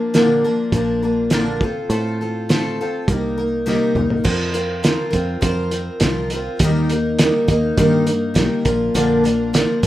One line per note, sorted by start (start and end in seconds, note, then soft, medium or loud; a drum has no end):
0.00 0.14 F3 soft
0.00 0.14 A#3 soft
0.00 0.14 D4 soft
0.00 0.13 A#4 medium
0.14 0.43 A#2 medium
0.14 0.43 D3 medium
0.14 0.44 F3 medium
0.14 0.44 A#3 medium
0.14 0.44 D4 medium
0.14 0.43 A#4 medium
0.14 snare loud
0.14 closed hi-hat medium
0.44 0.72 F3 soft
0.44 0.73 A#3 soft
0.44 0.74 D4 medium
0.44 0.73 A#4 medium
0.72 1.60 A#1 medium
0.72 1.02 F3 medium
0.72 1.03 A#3 medium
0.72 1.02 D4 medium
0.72 1.01 A#4 medium
0.72 kick loud
0.72 closed hi-hat medium
1.03 1.31 F3 soft
1.03 1.31 A#3 soft
1.03 1.31 D4 soft
1.03 1.32 A#4 soft
1.30 1.60 A#2 medium
1.30 1.61 D3 medium
1.30 1.61 F3 medium
1.30 1.61 A#3 medium
1.30 1.61 D4 medium
1.30 1.61 A#4 medium
1.30 snare loud
1.30 closed hi-hat medium
1.60 1.72 A1 medium
1.60 1.90 F4 soft
1.60 1.90 A4 medium
1.60 kick loud
1.64 1.90 C4 soft
1.90 2.83 A2 loud
1.90 2.20 A3 medium
1.90 2.20 C4 medium
1.90 2.20 F4 medium
1.90 2.20 A4 medium
1.90 closed hi-hat medium
2.21 2.49 C4 soft
2.21 2.49 F4 soft
2.21 2.50 A4 soft
2.49 2.79 A3 medium
2.49 2.79 C4 medium
2.49 2.79 F4 medium
2.49 2.79 A4 loud
2.49 snare loud
2.49 closed hi-hat medium
2.81 3.09 C4 medium
2.81 3.09 F4 medium
2.81 3.09 A4 medium
3.08 3.77 C2 medium
3.08 3.38 G3 medium
3.08 3.38 A#3 medium
3.08 3.38 D#4 medium
3.08 kick loud
3.08 closed hi-hat medium
3.12 3.36 A#4 medium
3.38 3.66 A#3 soft
3.38 3.65 D#4 soft
3.38 3.67 A#4 medium
3.66 3.96 C3 medium
3.66 3.96 G3 medium
3.66 3.96 A#3 medium
3.66 3.96 D#4 medium
3.66 3.94 A#4 medium
3.66 snare soft
3.95 4.19 C2 medium
3.95 4.24 A#3 soft
3.95 4.25 D#4 soft
3.95 4.24 A#4 soft
3.95 mid tom medium
4.10 floor tom medium
4.24 4.94 F2 medium
4.24 4.54 F3 medium
4.24 4.54 C4 medium
4.24 4.53 F4 medium
4.24 4.53 A#4 medium
4.24 kick loud
4.24 crash loud
4.54 4.83 C4 soft
4.54 4.84 F4 medium
4.54 4.84 A#4 medium
4.54 closed hi-hat medium
4.83 5.13 F3 medium
4.83 5.13 C4 medium
4.83 5.11 F4 medium
4.83 5.09 A#4 medium
4.83 snare loud
4.83 closed hi-hat medium
5.11 5.37 F2 medium
5.11 5.41 C4 medium
5.11 5.41 F4 soft
5.11 5.42 A#4 medium
5.11 kick medium
5.11 closed hi-hat medium
5.41 5.89 F2 medium
5.41 5.71 F3 medium
5.41 5.72 C4 medium
5.41 5.70 F4 medium
5.41 5.70 A#4 medium
5.41 kick loud
5.41 closed hi-hat medium
5.71 6.01 C4 soft
5.71 6.02 F4 soft
5.71 6.01 A#4 medium
5.71 closed hi-hat medium
6.00 6.48 C2 medium
6.00 6.31 F3 medium
6.00 6.32 C4 medium
6.00 6.32 F4 medium
6.00 kick medium
6.00 snare loud
6.00 closed hi-hat medium
6.04 6.32 A#4 medium
6.30 6.62 F4 medium
6.30 6.61 A#4 medium
6.30 closed hi-hat medium
6.35 6.63 C4 medium
6.59 7.30 D#2 loud
6.59 6.91 D#3 medium
6.59 6.91 G3 medium
6.59 kick loud
6.59 closed hi-hat medium
6.64 6.92 A#3 medium
6.64 6.91 D#4 medium
6.64 6.89 A#4 medium
6.89 7.20 A#3 soft
6.89 7.21 D#4 soft
6.89 7.20 A#4 medium
6.89 closed hi-hat medium
7.19 7.49 G3 medium
7.19 7.49 A#3 medium
7.19 7.48 D#4 medium
7.19 7.47 A#4 medium
7.19 snare loud
7.19 closed hi-hat loud
7.48 7.72 D#2 medium
7.48 7.77 A#3 medium
7.48 7.78 D#4 medium
7.48 7.78 A#4 medium
7.48 kick medium
7.48 closed hi-hat medium
7.77 8.37 G2 medium
7.77 8.07 D#3 medium
7.77 8.08 G3 medium
7.77 8.08 A#3 medium
7.77 8.06 D#4 medium
7.77 8.05 A#4 medium
7.77 kick loud
7.77 closed hi-hat medium
8.06 8.34 A#3 soft
8.06 8.35 D#4 soft
8.06 8.36 A#4 medium
8.06 closed hi-hat medium
8.34 8.48 B1 medium
8.34 8.65 G3 medium
8.34 8.65 A#3 medium
8.34 8.65 D#4 medium
8.34 8.64 A#4 medium
8.34 kick medium
8.34 snare loud
8.34 closed hi-hat medium
8.65 8.89 A#1 medium
8.65 8.94 F3 medium
8.65 8.94 A#3 soft
8.65 8.95 D4 medium
8.65 8.95 A#4 medium
8.65 kick loud
8.65 closed hi-hat medium
8.94 9.64 A#1 loud
8.94 9.24 A#2 medium
8.94 9.25 D3 medium
8.94 9.25 F3 medium
8.94 9.25 A#3 medium
8.94 9.24 D4 medium
8.94 9.23 A#4 medium
8.94 closed hi-hat medium
9.24 9.52 F3 soft
9.24 9.53 A#3 soft
9.24 9.54 D4 medium
9.24 9.54 A#4 medium
9.24 closed hi-hat medium
9.53 9.83 F3 medium
9.53 9.83 A#3 medium
9.53 9.82 D4 medium
9.53 9.81 A#4 medium
9.53 snare loud
9.53 closed hi-hat medium
9.83 9.87 A#1 medium
9.83 9.87 D4 medium
9.83 9.87 A#4 medium
9.83 kick medium
9.83 closed hi-hat medium